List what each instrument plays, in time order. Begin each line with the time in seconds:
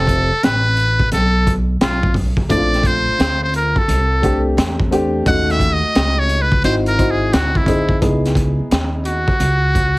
Already playing: upright bass F1, muted trumpet A4
0.07 kick, closed hi-hat
0.31 muted upright bass stroke
0.43 upright bass A1, muted trumpet B4, snare, closed hi-hat
0.77 closed hi-hat
0.99 kick
1.12 upright bass B1, muted trumpet A4, snare, closed hi-hat
1.47 kick, closed hi-hat
1.81 upright bass B1, muted trumpet F4, snare, closed hi-hat
2.03 kick
2.14 kick, open hi-hat
2.37 kick
2.49 upright bass A#1, upright piano A3 C4 D4 E4, muted trumpet D5, kick, closed hi-hat
2.58 upright piano F4
2.74 snare, closed hi-hat
2.83 muted trumpet C5, kick, closed hi-hat
3.07 muted upright bass stroke
3.19 upright bass D2, snare, closed hi-hat
3.44 muted trumpet C5
3.54 muted trumpet A#4, closed hi-hat
3.76 muted trumpet A4, muted upright bass stroke, kick
3.88 upright bass C2, closed hi-hat
4.22 upright piano A3 C4 D4 G4, kick, closed hi-hat
4.57 upright bass E2, snare, closed hi-hat
4.80 kick
4.91 upright piano A3 C4 D4 G4, closed hi-hat
5.26 upright bass D#2, upright piano A3 C#4 D#4 F#4, muted trumpet F#5, kick, closed hi-hat
5.50 muted trumpet E5, snare, closed hi-hat
5.59 kick, closed hi-hat
5.73 muted trumpet D#5
5.83 muted upright bass stroke
5.95 upright bass C#2, snare, closed hi-hat
6.19 muted trumpet C#5
6.29 closed hi-hat
6.42 muted trumpet B4
6.52 kick
6.64 upright bass G#1, upright piano C4 D#4 E4 F#4, muted trumpet C5, snare, closed hi-hat
6.86 muted trumpet A#4, closed hi-hat
6.98 upright piano C4 D#4 E4 F#4, kick, closed hi-hat
7.11 muted trumpet G#4
7.33 upright bass D2, muted trumpet F#4, snare, closed hi-hat
7.55 muted trumpet E4, kick
7.66 upright piano C4 D#4 E4 G#4, kick, closed hi-hat
7.89 kick
8.02 upright bass C#2, upright piano B3 D#4 E4 G#4, kick, closed hi-hat
8.26 snare, closed hi-hat
8.35 kick, closed hi-hat
8.59 muted upright bass stroke
8.71 upright bass D#2, snare, closed hi-hat
9.05 muted trumpet F#4, closed hi-hat
9.28 muted upright bass stroke, kick
9.40 upright bass C#2, closed hi-hat
9.75 kick, closed hi-hat